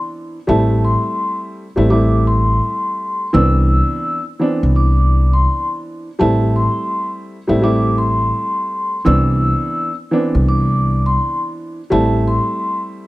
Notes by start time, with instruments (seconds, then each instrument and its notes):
Already playing: upright piano E3 B3 C4 D4
0.47 upright bass A1, upright piano G3 A3 C4 E4, vibraphone A5
0.85 vibraphone C6
1.76 upright bass A1, upright piano G3 A3 C4 E4
1.90 upright piano G3 A3 C4 E4, vibraphone D6
2.27 vibraphone C6
3.33 upright bass C2, upright piano E3 B3 C4 D4, vibraphone E6
4.39 upright piano E3 B3 C4 D4
4.63 upright bass C2
4.76 vibraphone D6
5.33 vibraphone C6
6.19 upright bass A1, upright piano G3 A3 C4 E4, vibraphone A5
6.56 vibraphone C6
7.47 upright bass A1, upright piano G3 A3 C4 E4
7.62 upright piano G3 A3 C4 E4, vibraphone D6
7.98 vibraphone C6
9.05 upright bass C2, upright piano E3 B3 C4 D4, vibraphone E6
10.11 upright piano E3 B3 C4 D4
10.35 upright bass C2
10.49 vibraphone D6
11.06 vibraphone C6
11.90 upright bass A1, upright piano G3 A3 C4 E4, vibraphone A5
12.28 vibraphone C6